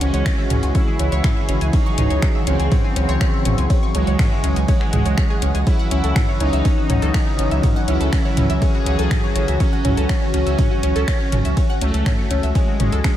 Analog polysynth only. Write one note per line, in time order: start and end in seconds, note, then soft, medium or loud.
0.01 0.65 C#4 loud
0.75 1.64 E4 loud
1.73 2.38 D#4 loud
2.47 3.85 C4 loud
3.95 4.59 G#3 loud
4.68 5.57 G#3 loud
5.67 6.31 E4 loud
6.41 7.79 D#4 loud
7.88 8.52 E4 loud
8.62 9.51 G#4 loud
9.60 10.24 C#4 loud
10.34 11.72 C#4 loud
11.81 12.46 A3 loud
12.55 13.17 G#3 loud